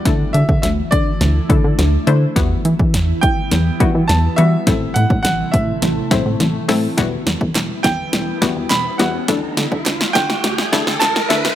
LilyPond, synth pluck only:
\new Staff \with { instrumentName = "Synth pluck" } { \time 4/4 \key e \minor \tempo 4 = 104 <a d' e' a'>4 r4. <a d' e' a'>8 r8 <a d' e' c''>16 r16 | <g b e' fis'>4 r4. <g b e' fis'>8 r8 <g b e' fis'>16 r16 | <a c' e' a'>4 r4. <a c' e' c''>8 r8 <a c' e' a'>16 r16 | <g b e' fis'>4 r4. <g b e' fis'>8 r8 <g b e' fis'>16 r16 |
<a d' e' a'>4 r4. <a d' e' a'>8 r8 <a d' e' a'>16 r16 | }